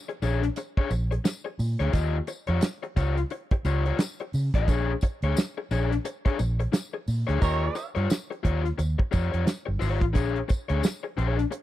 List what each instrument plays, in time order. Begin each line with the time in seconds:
0.09 muted overdriven electric guitar stroke, closed hi-hat
0.22 fingered electric bass A#1, overdriven electric guitar D4 G#4 C#5, closed hi-hat, tambourine
0.43 muted overdriven electric guitar stroke, snare, closed hi-hat
0.56 muted overdriven electric guitar stroke, closed hi-hat, tambourine
0.77 overdriven electric guitar D4 G#4 C#5, kick
0.91 fingered electric bass A#1, muted overdriven electric guitar stroke, closed hi-hat, tambourine
1.11 muted overdriven electric guitar stroke, closed hi-hat
1.25 muted overdriven electric guitar stroke, snare, closed hi-hat, tambourine
1.45 muted overdriven electric guitar stroke
1.59 fingered electric bass A#2, open hi-hat, tambourine
1.80 fingered electric bass D2, overdriven electric guitar D4 G#4 C#5, snare, closed hi-hat
1.93 fingered electric bass D#2, overdriven electric guitar F4 G4 D#5, kick, closed hi-hat, tambourine
2.27 muted overdriven electric guitar stroke, closed hi-hat, tambourine
2.47 fingered electric bass F2, overdriven electric guitar F4 G4 C#5, closed hi-hat
2.61 snare, closed hi-hat, tambourine
2.83 muted overdriven electric guitar stroke, closed hi-hat
2.96 fingered electric bass C#2, overdriven electric guitar F4 G4 C#5, kick, closed hi-hat, tambourine
3.16 muted overdriven electric guitar stroke, snare, closed hi-hat
3.30 muted overdriven electric guitar stroke, closed hi-hat
3.51 muted overdriven electric guitar stroke, kick, closed hi-hat
3.65 fingered electric bass C#2, overdriven electric guitar F4 G4 C#5, closed hi-hat, tambourine
3.86 overdriven electric guitar F4 G4 C#5, closed hi-hat
3.99 muted overdriven electric guitar stroke, snare, closed hi-hat, tambourine
4.20 muted overdriven electric guitar stroke, closed hi-hat
4.33 fingered electric bass C#3, open hi-hat, tambourine
4.54 fingered electric bass A1, overdriven electric guitar F4 G4 D#5, kick, snare, closed hi-hat
4.68 fingered electric bass A#1, overdriven electric guitar D4 G#4 C#5, kick, closed hi-hat, tambourine
5.01 muted overdriven electric guitar stroke, kick, closed hi-hat, tambourine
5.22 fingered electric bass D2, overdriven electric guitar D4 G#4 C#5, closed hi-hat
5.37 snare, closed hi-hat, tambourine
5.58 muted overdriven electric guitar stroke
5.71 fingered electric bass A#1, overdriven electric guitar D4 G#4 C#5, closed hi-hat, tambourine
5.91 muted overdriven electric guitar stroke, snare, closed hi-hat
6.05 muted overdriven electric guitar stroke, closed hi-hat, tambourine
6.25 overdriven electric guitar D4 G#4 C#5, kick, closed hi-hat
6.39 fingered electric bass A#1, muted overdriven electric guitar stroke, closed hi-hat, tambourine
6.60 muted overdriven electric guitar stroke, closed hi-hat
6.72 muted overdriven electric guitar stroke, snare, closed hi-hat, tambourine
6.93 muted overdriven electric guitar stroke
7.08 fingered electric bass A#2, open hi-hat, tambourine
7.27 fingered electric bass D2, overdriven electric guitar D4 G#4 C#5, snare, closed hi-hat
7.41 fingered electric bass D#2, overdriven electric guitar F4 G4 D#5, horn section G4 A#4 C#5, kick, closed hi-hat, tambourine
7.75 muted overdriven electric guitar stroke, closed hi-hat, tambourine
7.95 fingered electric bass G2, overdriven electric guitar F4 G4 C#5, closed hi-hat
8.10 snare, closed hi-hat, tambourine
8.31 muted overdriven electric guitar stroke, closed hi-hat
8.43 fingered electric bass D#2, overdriven electric guitar F4 G4 C#5, kick, closed hi-hat
8.64 muted overdriven electric guitar stroke, snare, closed hi-hat
8.78 fingered electric bass D#2, muted overdriven electric guitar stroke, closed hi-hat, tambourine
8.99 muted overdriven electric guitar stroke, kick
9.11 fingered electric bass F2, overdriven electric guitar F4 G4 C#5, kick, closed hi-hat, tambourine
9.32 fingered electric bass F2, overdriven electric guitar F4 G4 C#5, closed hi-hat
9.46 muted overdriven electric guitar stroke, snare, closed hi-hat, tambourine
9.66 fingered electric bass G1, muted overdriven electric guitar stroke
9.79 fingered electric bass G#1, overdriven electric guitar F4 G4 C#5, open hi-hat, tambourine
10.01 fingered electric bass A1, muted overdriven electric guitar stroke, kick, closed hi-hat
10.13 fingered electric bass A#1, overdriven electric guitar D4 G#4 C#5, kick, closed hi-hat, tambourine
10.36 closed hi-hat
10.48 muted overdriven electric guitar stroke, kick, closed hi-hat, tambourine
10.69 fingered electric bass D2, overdriven electric guitar D4 G#4 C#5, closed hi-hat
10.83 snare, closed hi-hat, tambourine
11.03 muted overdriven electric guitar stroke
11.17 fingered electric bass A#1, overdriven electric guitar D4 G#4 C#5, closed hi-hat
11.38 muted overdriven electric guitar stroke, snare, closed hi-hat
11.51 muted overdriven electric guitar stroke, closed hi-hat